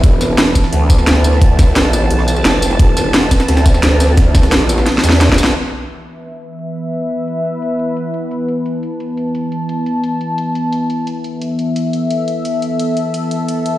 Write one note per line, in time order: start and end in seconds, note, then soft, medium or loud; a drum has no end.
0.00 0.54 E1 loud
0.00 5.51 E3 medium
0.00 5.51 B3 medium
0.00 5.51 B4 medium
0.00 5.53 A5 medium
0.00 kick loud
0.00 closed hi-hat medium
0.21 snare soft
0.21 closed hi-hat medium
0.21 tambourine medium
0.38 snare loud
0.38 closed hi-hat medium
0.47 closed hi-hat soft
0.55 kick medium
0.55 snare medium
0.55 closed hi-hat medium
0.55 tambourine medium
0.64 snare medium
0.64 snare soft
0.73 1.72 D2 loud
0.73 closed hi-hat medium
0.90 kick loud
0.90 closed hi-hat medium
0.90 tambourine medium
0.98 snare soft
0.98 tambourine soft
1.07 snare loud
1.07 closed hi-hat medium
1.16 closed hi-hat soft
1.24 closed hi-hat medium
1.24 tambourine medium
1.33 snare medium
1.42 kick loud
1.42 closed hi-hat medium
1.59 kick loud
1.59 snare soft
1.59 closed hi-hat medium
1.59 open hi-hat medium
1.59 tambourine medium
1.72 1.94 C2 loud
1.76 snare loud
1.76 closed hi-hat medium
1.93 2.09 A#1 loud
1.93 closed hi-hat medium
1.93 tambourine medium
2.10 2.44 B1 loud
2.10 closed hi-hat medium
2.19 snare medium
2.28 closed hi-hat medium
2.28 tambourine medium
2.36 tambourine soft
2.45 2.78 F1 medium
2.45 snare loud
2.45 closed hi-hat medium
2.62 snare medium
2.62 closed hi-hat medium
2.62 tambourine medium
2.71 snare soft
2.71 closed hi-hat soft
2.79 3.30 E1 loud
2.79 kick loud
2.79 closed hi-hat loud
2.79 closed hi-hat medium
2.97 snare soft
2.97 closed hi-hat medium
2.97 tambourine medium
3.14 snare loud
3.14 closed hi-hat medium
3.23 closed hi-hat soft
3.31 kick medium
3.31 snare loud
3.31 closed hi-hat medium
3.31 tambourine medium
3.40 snare loud
3.40 snare soft
3.40 closed hi-hat medium
3.48 4.47 D2 loud
3.48 snare loud
3.48 closed hi-hat loud
3.48 closed hi-hat medium
3.57 snare loud
3.57 snare soft
3.57 closed hi-hat medium
3.66 kick loud
3.66 snare loud
3.66 closed hi-hat medium
3.66 tambourine medium
3.74 snare soft
3.74 tambourine soft
3.83 snare loud
3.83 closed hi-hat medium
3.92 closed hi-hat soft
4.00 snare loud
4.00 closed hi-hat medium
4.00 tambourine medium
4.09 snare medium
4.17 kick loud
4.17 snare loud
4.17 closed hi-hat medium
4.35 kick loud
4.35 snare loud
4.35 snare soft
4.35 closed hi-hat medium
4.35 tambourine medium
4.43 snare loud
4.43 closed hi-hat medium
4.47 4.69 C2 loud
4.52 snare loud
4.52 closed hi-hat medium
4.52 closed hi-hat loud
4.69 4.85 A#1 loud
4.69 closed hi-hat medium
4.69 tambourine medium
4.78 snare soft
4.86 snare medium
4.86 closed hi-hat medium
4.86 closed hi-hat loud
4.95 snare medium
4.98 snare medium
5.04 5.37 E2 loud
5.04 snare loud
5.04 closed hi-hat medium
5.04 tambourine medium
5.09 snare medium
5.09 tambourine soft
5.12 snare medium
5.12 closed hi-hat medium
5.17 snare medium
5.17 closed hi-hat medium
5.21 snare loud
5.21 snare medium
5.21 closed hi-hat medium
5.21 closed hi-hat loud
5.29 kick medium
5.29 snare loud
5.38 5.54 B1 loud
5.38 snare medium
5.38 closed hi-hat medium
5.38 tambourine medium
5.44 snare loud
5.44 closed hi-hat soft
5.44 tambourine soft
5.55 13.78 E3 medium
5.55 13.78 B3 medium
5.55 11.03 B4 medium
5.55 8.30 E5 medium
5.73 closed hi-hat medium
5.90 closed hi-hat medium
6.07 closed hi-hat medium
6.24 closed hi-hat medium
6.42 closed hi-hat medium
6.59 closed hi-hat medium
6.76 closed hi-hat medium
6.93 closed hi-hat medium
7.11 closed hi-hat medium
7.28 closed hi-hat medium
7.45 closed hi-hat medium
7.62 closed hi-hat medium
7.79 closed hi-hat medium
7.97 closed hi-hat medium
8.14 closed hi-hat medium
8.31 11.06 A5 medium
8.31 closed hi-hat medium
8.48 closed hi-hat medium
8.66 closed hi-hat medium
8.83 closed hi-hat medium
9.00 closed hi-hat medium
9.17 closed hi-hat medium
9.35 closed hi-hat medium
9.52 closed hi-hat medium
9.69 closed hi-hat medium
9.86 closed hi-hat medium
10.04 closed hi-hat medium
10.21 closed hi-hat medium
10.38 closed hi-hat medium
10.55 closed hi-hat medium
10.73 closed hi-hat medium
10.90 closed hi-hat medium
11.07 13.78 A4 medium
11.07 13.78 E5 medium
11.07 closed hi-hat medium
11.24 closed hi-hat medium
11.42 closed hi-hat medium
11.59 closed hi-hat medium
11.76 closed hi-hat medium
11.93 closed hi-hat medium
12.11 closed hi-hat medium
12.28 closed hi-hat medium
12.45 closed hi-hat medium
12.62 closed hi-hat medium
12.79 closed hi-hat medium
12.97 closed hi-hat medium
13.14 closed hi-hat medium
13.31 closed hi-hat medium
13.48 closed hi-hat medium
13.66 closed hi-hat medium